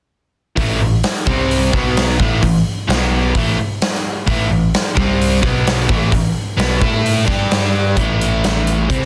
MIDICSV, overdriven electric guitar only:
0, 0, Header, 1, 2, 480
1, 0, Start_track
1, 0, Tempo, 462606
1, 598, Time_signature, 4, 2, 24, 8
1, 9392, End_track
2, 0, Start_track
2, 0, Title_t, "Overdriven electric guitar"
2, 0, Program_c, 0, 29
2, 583, Note_on_c, 0, 45, 84
2, 587, Note_on_c, 0, 52, 91
2, 595, Note_on_c, 0, 57, 103
2, 823, Note_off_c, 0, 45, 0
2, 824, Note_off_c, 0, 52, 0
2, 829, Note_off_c, 0, 57, 0
2, 835, Note_on_c, 0, 45, 59
2, 839, Note_on_c, 0, 52, 67
2, 1028, Note_off_c, 0, 45, 0
2, 1030, Note_off_c, 0, 52, 0
2, 1311, Note_on_c, 0, 48, 88
2, 1316, Note_on_c, 0, 60, 90
2, 1319, Note_on_c, 0, 55, 85
2, 1782, Note_off_c, 0, 48, 0
2, 1787, Note_on_c, 0, 47, 76
2, 1788, Note_off_c, 0, 60, 0
2, 1790, Note_off_c, 0, 55, 0
2, 1796, Note_on_c, 0, 54, 84
2, 1796, Note_on_c, 0, 59, 89
2, 2258, Note_off_c, 0, 47, 0
2, 2262, Note_on_c, 0, 45, 88
2, 2267, Note_off_c, 0, 54, 0
2, 2268, Note_off_c, 0, 59, 0
2, 2272, Note_on_c, 0, 52, 92
2, 2273, Note_on_c, 0, 57, 96
2, 2499, Note_off_c, 0, 45, 0
2, 2506, Note_off_c, 0, 52, 0
2, 2507, Note_off_c, 0, 57, 0
2, 2511, Note_on_c, 0, 45, 64
2, 2518, Note_on_c, 0, 52, 66
2, 2705, Note_off_c, 0, 45, 0
2, 2708, Note_off_c, 0, 52, 0
2, 2984, Note_on_c, 0, 47, 89
2, 2994, Note_on_c, 0, 54, 88
2, 3002, Note_on_c, 0, 59, 95
2, 3461, Note_off_c, 0, 47, 0
2, 3466, Note_off_c, 0, 54, 0
2, 3469, Note_on_c, 0, 45, 89
2, 3470, Note_off_c, 0, 59, 0
2, 3473, Note_on_c, 0, 52, 89
2, 3477, Note_on_c, 0, 57, 105
2, 3704, Note_off_c, 0, 45, 0
2, 3706, Note_off_c, 0, 52, 0
2, 3708, Note_off_c, 0, 57, 0
2, 4426, Note_on_c, 0, 45, 92
2, 4434, Note_on_c, 0, 52, 91
2, 4440, Note_on_c, 0, 57, 97
2, 4645, Note_off_c, 0, 52, 0
2, 4647, Note_off_c, 0, 45, 0
2, 4658, Note_on_c, 0, 52, 64
2, 4659, Note_on_c, 0, 45, 60
2, 4668, Note_off_c, 0, 57, 0
2, 4857, Note_off_c, 0, 45, 0
2, 4857, Note_off_c, 0, 52, 0
2, 5136, Note_on_c, 0, 48, 93
2, 5141, Note_on_c, 0, 55, 95
2, 5149, Note_on_c, 0, 60, 100
2, 5611, Note_off_c, 0, 48, 0
2, 5615, Note_off_c, 0, 55, 0
2, 5616, Note_on_c, 0, 47, 94
2, 5617, Note_off_c, 0, 60, 0
2, 5619, Note_on_c, 0, 54, 91
2, 5621, Note_on_c, 0, 59, 89
2, 6091, Note_off_c, 0, 47, 0
2, 6095, Note_on_c, 0, 45, 87
2, 6096, Note_off_c, 0, 54, 0
2, 6098, Note_off_c, 0, 59, 0
2, 6101, Note_on_c, 0, 52, 98
2, 6108, Note_on_c, 0, 57, 93
2, 6330, Note_off_c, 0, 45, 0
2, 6332, Note_off_c, 0, 52, 0
2, 6342, Note_off_c, 0, 57, 0
2, 6342, Note_on_c, 0, 45, 60
2, 6345, Note_on_c, 0, 52, 59
2, 6538, Note_off_c, 0, 45, 0
2, 6540, Note_off_c, 0, 52, 0
2, 6816, Note_on_c, 0, 47, 85
2, 6823, Note_on_c, 0, 54, 87
2, 6823, Note_on_c, 0, 59, 112
2, 7056, Note_off_c, 0, 47, 0
2, 7060, Note_off_c, 0, 54, 0
2, 7060, Note_off_c, 0, 59, 0
2, 7067, Note_on_c, 0, 57, 90
2, 7071, Note_on_c, 0, 64, 98
2, 7073, Note_on_c, 0, 69, 112
2, 7525, Note_off_c, 0, 57, 0
2, 7529, Note_on_c, 0, 55, 75
2, 7531, Note_off_c, 0, 64, 0
2, 7535, Note_on_c, 0, 62, 81
2, 7536, Note_off_c, 0, 69, 0
2, 7541, Note_on_c, 0, 67, 90
2, 8254, Note_off_c, 0, 55, 0
2, 8256, Note_on_c, 0, 45, 77
2, 8257, Note_off_c, 0, 62, 0
2, 8260, Note_off_c, 0, 67, 0
2, 8263, Note_on_c, 0, 52, 80
2, 8267, Note_on_c, 0, 57, 88
2, 9220, Note_off_c, 0, 45, 0
2, 9223, Note_off_c, 0, 52, 0
2, 9224, Note_on_c, 0, 48, 83
2, 9225, Note_off_c, 0, 57, 0
2, 9230, Note_on_c, 0, 55, 85
2, 9232, Note_on_c, 0, 60, 93
2, 9392, Note_off_c, 0, 48, 0
2, 9392, Note_off_c, 0, 55, 0
2, 9392, Note_off_c, 0, 60, 0
2, 9392, End_track
0, 0, End_of_file